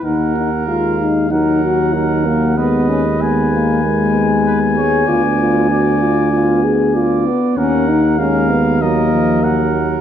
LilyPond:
<<
  \new Staff \with { instrumentName = "Trumpet" } { \time 4/4 \key ees \minor \tempo 4 = 96 ges''4 f''4 ges''2 | dis''4 gis''2.~ | gis''2.~ gis''8 r8 | ges''4 f''4 ees''4 ges''4 | }
  \new Staff \with { instrumentName = "Trumpet" } { \time 4/4 \key ees \minor bes'2 bes'4 bes'4 | b'2. b'8 cis''8 | d''4 d''4. r8 d''4 | bes'4 bes'4 bes'4 bes'4 | }
  \new Staff \with { instrumentName = "French horn" } { \time 4/4 \key ees \minor ees'8 ees'8 f'8 ees'8 ees'8 ges'8 ees'8 bes8 | b8 cis'8 b8 ais8 gis4. gis'8 | f'8 f'8 ges'8 f'8 f'8 aes'8 f'8 b8 | des'8 ees'8 des'8 ces'8 bes4. r8 | }
  \new Staff \with { instrumentName = "Euphonium" } { \clef bass \time 4/4 \key ees \minor bes4 aes4 ges2 | gis4 gis4 ais8 b4.~ | b2 b4. r8 | bes4 aes4 ges8 f8 ges4 | }
  \new Staff \with { instrumentName = "Tuba" } { \clef bass \time 4/4 \key ees \minor ees,1~ | ees,1 | d,2.~ d,8 r8 | ees,1 | }
>>